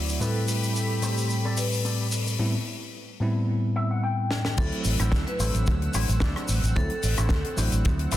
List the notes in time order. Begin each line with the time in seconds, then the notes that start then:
Already playing: D2 F#3 A3 C4 E4 F#4 D5
0.08 muted clean electric guitar stroke, shaker
0.20 A2 G3 A3 C4 E4 G4 A4 B4 B5, shaker
0.48 open hi-hat, shaker
0.63 shaker
0.76 shaker
1.02 A2 G3 C4 G4 A4 C5, open hi-hat, shaker
1.18 shaker
1.30 shaker
1.45 C4 G4 A4 D5
1.57 B4, open hi-hat, shaker
1.72 shaker
1.84 C4 G4 A4 D5, shaker
2.12 open hi-hat, shaker
2.27 muted clean electric guitar stroke, shaker
2.39 A2 G3 B3 C4 E4
3.20 A2 G3 B3 C4 E4
3.76 E5
3.91 F#5
4.03 G5
4.31 snare
4.45 snare
4.57 D2 F#3 A3 C4 E4 A4 F#5 E6, muted clean electric guitar stroke, kick, closed hi-hat, crash, shaker
4.72 muted clean electric guitar stroke, closed hi-hat
4.84 A1, open hi-hat, shaker
5.00 A1 D4 E4 F#4 C5, cross-stick, closed hi-hat, shaker
5.12 D2, kick, snare, closed hi-hat, shaker
5.27 B4, muted clean electric guitar stroke, closed hi-hat
5.39 A1 F#3 A3 C4 D4 E4 F#4 A4 C5, open hi-hat, shaker
5.54 A1, closed hi-hat, shaker
5.67 D2, kick, closed hi-hat, shaker
5.82 closed hi-hat
5.94 A1 D4 E4 F#4 C5, open hi-hat, shaker
6.09 A1, closed hi-hat, shaker
6.20 D2 D4 E4 F#4 D5, kick, snare, closed hi-hat, shaker
6.36 cross-stick, closed hi-hat
6.48 A1, open hi-hat, shaker
6.63 A1, closed hi-hat, shaker
6.76 D2 F#3 A3 C4 E4 A4, muted clean electric guitar stroke, kick, closed hi-hat, shaker
6.90 muted clean electric guitar stroke, closed hi-hat
7.03 A1, open hi-hat, shaker
7.17 A1 D4 E4 F#4 C5, cross-stick, closed hi-hat, shaker
7.29 D2, kick, snare, closed hi-hat, shaker
7.44 muted clean electric guitar stroke, closed hi-hat
7.56 A1 F#3 A3 C4 D4 E4 F#4 C5, open hi-hat, shaker
7.72 A1, closed hi-hat, shaker
7.85 D2, kick, closed hi-hat, shaker
7.99 closed hi-hat
8.11 A1 D4 E4 F#4 B4 D5, open hi-hat, shaker